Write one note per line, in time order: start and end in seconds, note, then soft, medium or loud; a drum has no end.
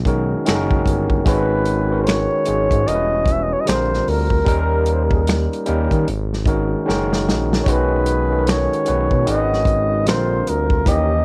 0.00 0.34 B1 loud
0.05 0.44 D#3 medium
0.05 0.45 G#3 medium
0.05 0.46 C#4 medium
0.05 0.46 F#4 medium
0.05 0.47 A#4 medium
0.05 kick medium
0.05 closed hi-hat soft
0.46 0.81 F#1 loud
0.46 1.22 D#3 loud
0.46 1.23 G#3 medium
0.46 1.23 C#4 medium
0.46 1.23 F#4 medium
0.46 0.55 A4 medium
0.46 finger snap medium
0.46 snare loud
0.46 closed hi-hat medium
0.55 1.27 A#4 loud
0.71 kick medium
0.86 1.20 G1 medium
0.86 kick medium
0.86 closed hi-hat medium
1.10 kick medium
1.25 2.27 G#1 loud
1.25 1.86 D#3 medium
1.25 1.86 G#3 medium
1.25 1.86 C#4 medium
1.25 1.87 F#4 medium
1.25 1.87 B4 loud
1.25 1.98 B4 loud
1.25 kick loud
1.25 closed hi-hat medium
1.65 closed hi-hat medium
1.89 2.43 D#3 medium
1.89 2.43 G#3 medium
1.89 2.44 C#4 medium
1.89 2.44 F#4 medium
1.89 2.45 A#4 medium
2.02 2.09 C5 medium
2.07 2.89 C#5 loud
2.07 finger snap medium
2.07 snare loud
2.07 closed hi-hat medium
2.45 2.68 G#1 medium
2.45 2.86 D#3 medium
2.45 2.86 G#3 medium
2.45 2.85 C#4 medium
2.45 2.86 F#4 medium
2.45 2.87 G#4 medium
2.45 closed hi-hat medium
2.71 2.84 G#2 loud
2.71 kick medium
2.71 closed hi-hat soft
2.85 3.54 E1 loud
2.85 3.62 G3 medium
2.85 3.63 C#4 medium
2.85 3.63 E4 medium
2.85 3.63 F#4 medium
2.85 2.95 A#4 medium
2.85 3.34 D#5 loud
2.85 closed hi-hat medium
2.95 3.67 B4 medium
3.26 kick medium
3.26 closed hi-hat soft
3.32 3.45 E5 medium
3.43 3.54 D#5 medium
3.53 3.62 C#5 medium
3.61 3.70 D#5 medium
3.65 4.01 A#1 medium
3.65 4.42 D3 medium
3.65 4.42 G3 medium
3.65 4.43 C4 medium
3.65 4.43 F4 medium
3.65 3.75 G#4 medium
3.65 4.11 C5 medium
3.65 snare medium
3.65 closed hi-hat medium
3.69 finger snap medium
3.75 4.47 A#4 medium
3.94 snare soft
4.08 4.41 D2 medium
4.08 4.95 A#4 medium
4.08 open hi-hat soft
4.30 kick medium
4.45 5.47 D#2 loud
4.45 5.60 G3 medium
4.45 5.61 A#3 medium
4.45 5.61 C#4 medium
4.45 5.61 D#4 medium
4.45 5.62 A#4 loud
4.45 kick loud
4.45 closed hi-hat medium
4.86 closed hi-hat medium
4.93 5.06 C5 medium
5.04 5.16 A#4 medium
5.11 5.23 G#4 medium
5.11 kick medium
5.22 5.28 A#4 medium
5.27 finger snap medium
5.27 snare loud
5.27 closed hi-hat medium
5.53 closed hi-hat soft
5.66 5.88 D#2 medium
5.66 6.06 G3 medium
5.66 6.06 A#3 medium
5.66 6.07 C#4 medium
5.66 6.07 D#4 medium
5.66 6.07 A#4 loud
5.66 closed hi-hat medium
5.91 6.05 D#3 medium
5.91 kick medium
5.91 closed hi-hat soft
6.08 6.74 G#1 loud
6.08 closed hi-hat medium
6.33 snare soft
6.45 6.84 D#3 medium
6.45 6.85 G#3 medium
6.45 6.86 C#4 medium
6.45 6.87 F#4 medium
6.45 6.87 A#4 medium
6.45 kick medium
6.45 closed hi-hat soft
6.86 7.30 F#1 loud
6.86 7.62 D#3 loud
6.86 7.63 G#3 medium
6.86 7.63 C#4 medium
6.86 7.63 F#4 medium
6.86 7.64 A#4 loud
6.86 snare medium
7.13 snare medium
7.28 7.61 A#1 medium
7.28 snare medium
7.53 snare medium
7.63 8.26 D#3 medium
7.63 8.84 D#3 medium
7.63 8.26 G#3 medium
7.63 8.84 C#4 medium
7.63 8.84 G#4 medium
7.63 7.71 C#5 medium
7.63 kick loud
7.67 8.67 B1 loud
7.67 8.27 C#4 medium
7.67 8.27 F#4 medium
7.67 8.27 B4 loud
7.67 8.51 B4 loud
7.67 closed hi-hat medium
8.06 closed hi-hat medium
8.29 8.83 D#3 medium
8.29 8.83 G#3 medium
8.29 8.84 C#4 medium
8.29 8.84 F#4 medium
8.29 8.37 A4 medium
8.39 8.88 A#4 medium
8.47 9.28 C#5 medium
8.47 finger snap medium
8.47 snare loud
8.47 closed hi-hat medium
8.73 closed hi-hat soft
8.85 9.08 B1 medium
8.85 9.24 D#3 medium
8.85 9.25 G#3 medium
8.85 9.25 C#4 medium
8.85 9.26 F#4 medium
8.85 9.27 B4 medium
8.85 closed hi-hat medium
9.11 9.25 B2 medium
9.11 kick medium
9.25 10.10 G#1 loud
9.25 10.02 D#3 medium
9.25 9.65 D#3 medium
9.25 10.02 G#3 medium
9.25 9.65 B3 medium
9.25 10.03 C#4 medium
9.25 9.65 F#4 medium
9.25 10.03 F#4 medium
9.25 9.35 A#4 medium
9.25 closed hi-hat medium
9.29 10.04 D#5 loud
9.35 10.07 B4 medium
9.53 snare soft
9.65 kick medium
9.65 closed hi-hat soft
10.05 10.41 A#1 loud
10.05 10.82 D3 medium
10.05 10.45 D3 medium
10.05 10.82 G3 medium
10.05 10.45 C4 medium
10.05 10.83 C4 medium
10.05 10.45 F4 medium
10.05 10.83 F4 medium
10.05 10.83 A#4 medium
10.05 10.51 C5 medium
10.05 snare loud
10.05 closed hi-hat medium
10.09 finger snap medium
10.47 10.81 D2 medium
10.47 10.90 A#4 medium
10.47 closed hi-hat medium
10.70 kick medium
10.85 11.25 D#2 loud
10.85 11.25 E3 medium
10.85 11.25 A#3 medium
10.85 11.25 C#4 medium
10.85 11.25 D#4 medium
10.85 11.25 G4 medium
10.85 11.25 G4 loud
10.85 11.25 D#5 loud
10.85 kick loud
10.85 closed hi-hat medium